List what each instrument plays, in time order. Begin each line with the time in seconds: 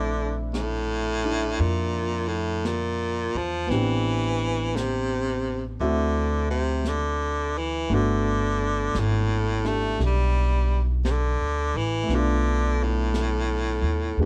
Already playing: upright bass A#1, baritone saxophone D3, grand piano A3 C4 D4 E4
0.54 baritone saxophone A2, brush sweep, snare, hi-hat pedal
1.24 grand piano D4 E4
1.59 upright bass F2, baritone saxophone A#2, brush sweep
2.28 baritone saxophone A2
2.65 baritone saxophone A#2, brush sweep, snare, hi-hat pedal
3.35 upright bass E2, baritone saxophone F3
3.67 upright bass A1, baritone saxophone E3, grand piano B3 C4, brush sweep, snare
3.71 grand piano D4 G4
4.76 baritone saxophone C3, brush sweep, snare, hi-hat pedal
5.80 upright bass D2, baritone saxophone D3, grand piano A3 C4 E4 F#4, brush sweep
6.50 baritone saxophone C3
6.85 baritone saxophone D3, brush sweep, snare, hi-hat pedal
7.58 baritone saxophone E3
7.89 upright bass G1, grand piano A3 B3 D4, brush sweep
7.94 baritone saxophone D3, grand piano F#4
8.95 upright bass G#1, brush sweep, snare, hi-hat pedal
8.99 baritone saxophone A2
9.64 baritone saxophone A3, grand piano D4 E4 G4, snare
9.99 upright bass B1, brush sweep, snare
10.05 baritone saxophone G3
11.05 baritone saxophone C3, brush sweep, snare, hi-hat pedal
11.11 baritone saxophone D3
11.39 upright bass D2
11.74 upright bass A1, baritone saxophone E3
12.03 grand piano A3
12.08 upright bass B1, grand piano B3 D4, brush sweep, snare
12.14 baritone saxophone D3, grand piano F4
12.83 baritone saxophone A2
13.14 brush sweep, snare, hi-hat pedal
13.82 upright bass D#2
14.17 upright bass E2, grand piano G#3 B3 D4 F#4
14.22 baritone saxophone G#2